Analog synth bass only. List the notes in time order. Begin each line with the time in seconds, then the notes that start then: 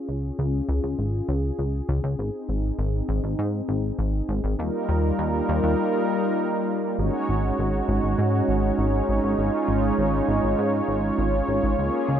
0.09 C#2
0.39 C#2
0.69 C#2
0.84 C#2
0.99 G#1
1.29 C#2
1.59 C#2
1.89 C#2
2.04 C#2
2.19 G#1
2.49 G#1
2.79 G#1
3.09 G#1
3.24 G#1
3.39 G#2
3.69 G#1
3.99 G#1
4.29 G#1
4.44 G#1
4.59 D#2
4.89 D#2
5.19 D#2
5.49 D#2
5.64 D#2
6.99 G#1
7.29 G#1
7.59 G#1
7.88 G#1
8.03 G#1
8.18 G#2
8.49 G#1
8.79 G#1
9.08 G#1
9.24 G#1
9.38 G#1
9.68 G#1
9.98 G#1
10.28 G#1
10.43 G#1
10.58 G#2
10.88 G#1
11.18 G#1
11.48 G#1
11.64 G#1
11.79 C#2
12.09 C#2